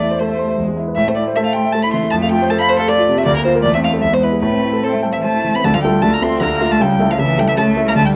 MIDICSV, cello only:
0, 0, Header, 1, 2, 480
1, 0, Start_track
1, 0, Key_signature, 0, "minor"
1, 0, Tempo, 383387
1, 1212, Time_signature, 3, 2, 24, 8
1, 5041, Tempo, 402955
1, 6961, Tempo, 385852
1, 10096, End_track
2, 0, Start_track
2, 0, Title_t, "Cello"
2, 0, Program_c, 0, 42
2, 0, Note_on_c, 0, 57, 55
2, 220, Note_off_c, 0, 57, 0
2, 228, Note_on_c, 0, 57, 52
2, 697, Note_off_c, 0, 57, 0
2, 704, Note_on_c, 0, 56, 57
2, 951, Note_off_c, 0, 56, 0
2, 1190, Note_on_c, 0, 57, 58
2, 1659, Note_off_c, 0, 57, 0
2, 1679, Note_on_c, 0, 57, 61
2, 2160, Note_off_c, 0, 57, 0
2, 2175, Note_on_c, 0, 57, 71
2, 2649, Note_off_c, 0, 57, 0
2, 2656, Note_on_c, 0, 57, 72
2, 3130, Note_off_c, 0, 57, 0
2, 3141, Note_on_c, 0, 57, 76
2, 4090, Note_on_c, 0, 58, 75
2, 4109, Note_off_c, 0, 57, 0
2, 4536, Note_off_c, 0, 58, 0
2, 4543, Note_on_c, 0, 57, 78
2, 5010, Note_on_c, 0, 56, 71
2, 5029, Note_off_c, 0, 57, 0
2, 5502, Note_on_c, 0, 57, 62
2, 5520, Note_off_c, 0, 56, 0
2, 5985, Note_off_c, 0, 57, 0
2, 5993, Note_on_c, 0, 60, 71
2, 6126, Note_on_c, 0, 57, 58
2, 6144, Note_off_c, 0, 60, 0
2, 6245, Note_off_c, 0, 57, 0
2, 6257, Note_on_c, 0, 55, 67
2, 6302, Note_off_c, 0, 55, 0
2, 6371, Note_on_c, 0, 52, 68
2, 6490, Note_on_c, 0, 57, 75
2, 6508, Note_off_c, 0, 52, 0
2, 6854, Note_on_c, 0, 59, 67
2, 6872, Note_off_c, 0, 57, 0
2, 6960, Note_off_c, 0, 59, 0
2, 6967, Note_on_c, 0, 57, 93
2, 7015, Note_off_c, 0, 57, 0
2, 7086, Note_on_c, 0, 53, 71
2, 7134, Note_off_c, 0, 53, 0
2, 7212, Note_on_c, 0, 55, 86
2, 7445, Note_off_c, 0, 55, 0
2, 7450, Note_on_c, 0, 57, 97
2, 7554, Note_off_c, 0, 57, 0
2, 7561, Note_on_c, 0, 58, 78
2, 7679, Note_on_c, 0, 60, 92
2, 7697, Note_off_c, 0, 58, 0
2, 7938, Note_on_c, 0, 58, 90
2, 7957, Note_off_c, 0, 60, 0
2, 8291, Note_on_c, 0, 57, 78
2, 8310, Note_off_c, 0, 58, 0
2, 8413, Note_on_c, 0, 55, 86
2, 8431, Note_off_c, 0, 57, 0
2, 8768, Note_off_c, 0, 55, 0
2, 8776, Note_on_c, 0, 53, 81
2, 8822, Note_off_c, 0, 53, 0
2, 8902, Note_on_c, 0, 52, 96
2, 9150, Note_on_c, 0, 55, 83
2, 9169, Note_off_c, 0, 52, 0
2, 9256, Note_off_c, 0, 55, 0
2, 9270, Note_on_c, 0, 52, 86
2, 9312, Note_off_c, 0, 52, 0
2, 9385, Note_on_c, 0, 57, 97
2, 9725, Note_off_c, 0, 57, 0
2, 9744, Note_on_c, 0, 58, 82
2, 9839, Note_off_c, 0, 58, 0
2, 9846, Note_on_c, 0, 57, 92
2, 9961, Note_off_c, 0, 57, 0
2, 9978, Note_on_c, 0, 55, 74
2, 10096, Note_off_c, 0, 55, 0
2, 10096, End_track
0, 0, End_of_file